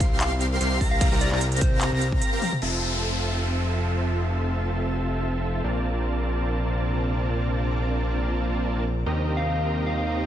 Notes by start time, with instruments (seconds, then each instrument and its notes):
Already playing: analog synth bass C2, supersaw synth C4 G4 A#4 F5 C6, soft synth lead F5, digital synth lead C7
0.00 kick, closed hi-hat
0.21 soft synth lead F5, clap, closed hi-hat
0.31 soft synth lead F5
0.41 closed hi-hat
0.61 analog synth bass C2, supersaw synth C4 G4 A#4 F5 C6, digital synth lead C7, closed hi-hat
0.81 analog synth bass C2, supersaw synth C4 G4 A#4 F5 A#5, digital synth lead A#6, kick, open hi-hat
0.91 soft synth lead F5
1.01 soft synth lead F5, kick, closed hi-hat, crash
1.12 analog synth bass C2, supersaw synth C4 G4 A#4 F5 A#5, digital synth lead A#6
1.21 soft synth lead D5, closed hi-hat
1.32 analog synth bass C2, supersaw synth C4 G4 A#4 F5 A#5, soft synth lead D5, digital synth lead A#6, clap
1.41 closed hi-hat
1.52 closed hi-hat
1.57 closed hi-hat
1.61 soft synth lead C5, kick, closed hi-hat
1.81 clap, closed hi-hat
1.92 analog synth bass C2, supersaw synth C4 G4 A#4 F5 A#5, digital synth lead A#6
2.01 closed hi-hat
2.12 kick
2.22 closed hi-hat
2.32 supersaw synth C4 G4 A#4 F5 A#5, digital synth lead A#6
2.42 open hi-hat, high tom
2.52 mid tom
2.62 analog synth bass F1, ambient pad C3 F4 E5, supersaw synth C4 F4 A4 E5 A5, crash, downlifter
5.64 analog synth bass A#1, ambient pad A#3 D4, supersaw synth C4 F4 A#4 D5 A5
9.06 analog synth bass D#2, ambient pad G3 A#3 D#4, supersaw synth C4 G4 A#4 D#5 A#5
9.37 soft synth lead F5
9.86 soft synth lead F5
9.97 soft synth lead F5
10.07 soft synth lead F5